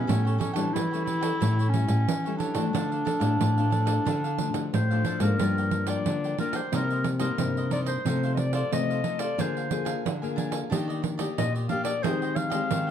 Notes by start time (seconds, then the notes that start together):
Already playing: G3 C#4 E4
0.07 A2 G4 A4 C#5 G5, pandeiro
0.25 A4 C#5 G5, pandeiro
0.38 C#4 G4 A4 C#5 G5, pandeiro
0.54 E3 G3 C#4 D4 A4 C#5 G5, pandeiro
0.58 E4
0.73 E3 E4, pandeiro
0.91 G3 C#4 A4 C#5 G5, pandeiro
0.96 E4
1.04 E4 G4 A4 C#5, pandeiro
1.09 G5
1.21 A4 C#5 G5, pandeiro
1.40 A2 G4 A4 C#5 G5, pandeiro
1.59 A4 C#5 G5, pandeiro
1.69 C#4
1.73 G3 C#4 E4, muted cavaquinho stroke, pandeiro
1.88 A2, muted cavaquinho stroke, pandeiro
2.08 E3, pandeiro
2.24 G3 C#4 E4 A4 C#5 G5, pandeiro
2.37 D4 G4 A4 C#5 G5, pandeiro
2.54 E3 F3 A3 D4 A4 C#5 G5, pandeiro
2.73 D3 D4 A4 D5 F5, pandeiro
2.92 A4 D5 F5, pandeiro
3.05 D4 A4 D5 F5, pandeiro
3.20 A2 F3 A3 D4 A4 D5 F5, pandeiro
3.41 A2, pandeiro
3.58 F3 A3 D4 A4 D5 F5, pandeiro
3.71 D4 A4 D5 F5, pandeiro
3.85 A4 D5 F5, pandeiro
4.05 D3 D4 A4 D5 F5, pandeiro
4.24 A4 D5 F5, pandeiro
4.38 F3 A3 D4, muted cavaquinho stroke, pandeiro
4.53 D3, muted cavaquinho stroke, pandeiro
4.74 A2 C5, pandeiro
4.91 F3 A3 D4 A4 D5 F5, pandeiro
5.05 D4 A4 D5 F5, pandeiro
5.20 G#2 F3 A#3 D4 A4 A#4 D5 F5, pandeiro
5.39 G2 F4 A#4 D5 G5, pandeiro
5.58 A#4 D5 G5, pandeiro
5.71 muted cavaquinho stroke, pandeiro
5.87 F3 A#3 D4 A#4 D5 G5, pandeiro
6.06 D3, pandeiro
6.24 A#4 D5 G5, pandeiro
6.38 F3 A#3 D4 F4 A#4 D5 G5, pandeiro
6.53 A#4 C5 D5 G5, pandeiro
6.73 C3 G3 A#3 D#4 A#4 C5 D#5, pandeiro
6.90 A#4 C5 D#5, pandeiro
7.04 muted cavaquinho stroke, pandeiro
7.19 G3 A#3 D#4 A#4 C5 D#5, pandeiro
7.38 G2 C3, pandeiro
7.57 A#4 C5 D#5, pandeiro
7.71 G3 A#3 D#4 A#4 C5 D5 D#5, pandeiro
7.86 A#4 C5 D#5, pandeiro
8.06 C3 F3 A3 D#4 A4 C5 F5, pandeiro
8.23 A4 C5 F5, pandeiro
8.34 D#5, muted cavaquinho stroke, pandeiro
8.39 D5
8.53 A4 C5 D5 F5, pandeiro
8.72 C3 F3 A3 D#4 D#5, pandeiro
8.90 A4 C5 F5, pandeiro
9.04 F3 A3 D#4 A4 C5 F5, pandeiro
9.19 A4 C5 D5 F5, pandeiro
9.38 D3 A#3 D4 F4 G#4 A#4 C5 F5 G#5, pandeiro
9.57 A#4 F5 G#5, pandeiro
9.71 A#3 F4 G#4, muted cavaquinho stroke, pandeiro
9.85 A#4 F5 G#5, pandeiro
10.06 D3, pandeiro
10.22 A#3 F4 G#4 A#4 F5 G#5, pandeiro
10.36 D4 A#4 F5 G#5, pandeiro
10.51 A#4 F5 G#5, pandeiro
10.70 D#3 A#3 D4 G4 D5 D#5, pandeiro
10.88 G4 D5 D#5, pandeiro
11.02 muted cavaquinho stroke, pandeiro
11.18 A#3 G4 D5 D#5, pandeiro
11.38 A#2 D#5, pandeiro
11.55 G4 D5 D#5, pandeiro
11.69 A#3 D4 G4 D5 D#5 F5, pandeiro
11.84 G4 D5 D#5, pandeiro
12.02 D#3 G#3 C4 G4 G#4 C5 D#5 G5, pandeiro
12.22 C5 D#5 G5, pandeiro
12.36 F5, muted cavaquinho stroke, pandeiro
12.50 G#3 C4 G4 C5 D#5 G5, pandeiro
12.71 D#3, pandeiro
12.87 G5